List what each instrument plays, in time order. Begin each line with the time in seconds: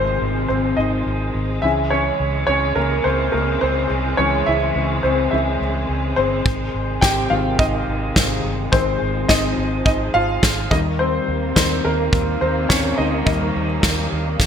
Already playing: fingered electric bass G#1, string section C3 F3 G#3, grand piano D#3 G#3 A#3 C4 A#4 C5
0.22 fingered electric bass G#1
0.48 fingered electric bass G#1, grand piano C4 C5
0.77 fingered electric bass G#1, grand piano D#4 D#5
1.06 fingered electric bass G#1
1.35 fingered electric bass G#1
1.62 fingered electric bass C#2, string section C#3 E3, grand piano E3 G#3 C#4 E4 E5
1.90 grand piano C#4 C#5
2.20 fingered electric bass C#2
2.47 fingered electric bass C#2, grand piano C#4 C#5
2.76 fingered electric bass C#2, grand piano A#3 A#4
3.04 fingered electric bass C#2, grand piano C4 C5
3.32 fingered electric bass C#2, grand piano A#3 A#4
3.61 fingered electric bass C#2, grand piano C4 C5
3.90 fingered electric bass C2
4.17 fingered electric bass C#2, grand piano E3 G#3 C#4 C#5
4.46 fingered electric bass C#2, grand piano E4 E5
4.76 fingered electric bass C#2
5.03 fingered electric bass C#2, grand piano C4 C5
5.31 fingered electric bass C#2, grand piano E3 G#3 C#4 E4 E5
5.61 fingered electric bass C#2
5.89 fingered electric bass C#2
6.16 fingered electric bass G1, grand piano C4 C5
6.46 fingered electric bass G#1, string section C3 D#3, kick
6.74 fingered electric bass G#1
7.01 fingered electric bass G#1, grand piano G4 G5, kick, snare
7.30 fingered electric bass G#1, grand piano D#3 G#3 C4 F4 F5
7.59 fingered electric bass G#1, grand piano D#4 D#5, kick
7.88 fingered electric bass G#1
8.16 fingered electric bass G#1, grand piano D#3 G#3 C4, kick, snare
8.44 fingered electric bass G1
8.72 fingered electric bass G#1, grand piano D#3 G#3 C4 C5, string section F3, kick
9.02 fingered electric bass G#1
9.28 fingered electric bass G#1, grand piano D#4 D#5, kick, snare
9.57 fingered electric bass G#1
9.85 fingered electric bass G#1, grand piano D#4 D#5, kick
10.14 fingered electric bass G#1, grand piano F4 F5
10.43 fingered electric bass G#1, kick, snare
10.70 fingered electric bass D#2, string section D#3 G3 A#3, grand piano D#3 G3 A#3 D#4 D#5, kick
10.99 grand piano C4 C5
11.28 fingered electric bass D#2
11.56 fingered electric bass D#2, grand piano D#3 G3 A#3 C4 C5, kick, snare
11.85 fingered electric bass D#2, grand piano A#3 A#4
12.13 fingered electric bass D#2, kick
12.41 fingered electric bass D#2, grand piano C4 C5
12.69 fingered electric bass D#2, grand piano C#4 C#5, kick, snare
12.98 fingered electric bass D2, grand piano D#4 D#5
13.26 fingered electric bass D#2, grand piano D#3 G3 A#3 D#4 D#5, kick
13.56 fingered electric bass D#2
13.83 fingered electric bass D#2, kick, snare
14.12 fingered electric bass D#2
14.40 fingered electric bass D#2, kick, snare